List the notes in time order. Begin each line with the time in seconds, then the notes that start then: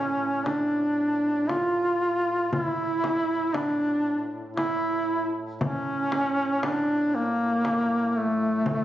Already playing: A2 C#4
0.46 D4, frame drum
1.49 F4, frame drum
2.52 E4, frame drum
3.04 frame drum
3.54 D4, frame drum
4.57 E4, frame drum
5.61 C#4, frame drum
6.12 frame drum
6.63 D4, frame drum
7.15 A#3
7.65 frame drum
8.17 A3
8.66 frame drum